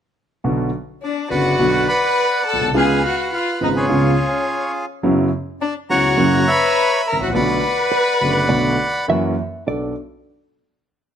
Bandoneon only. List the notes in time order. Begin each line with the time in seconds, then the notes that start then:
1.04 D5
1.30 B4 D5 F#5
1.89 D5 F#5 B5
2.48 A5
2.76 B4 F5 G#5
3.07 F#5
3.34 F5
3.63 D#5
3.76 F4 G#4 C#5
5.61 D5
5.90 C#5 F#5 A#5
6.48 E5 B5
7.08 A#5
7.23 F#5
7.34 D5 F#5 B5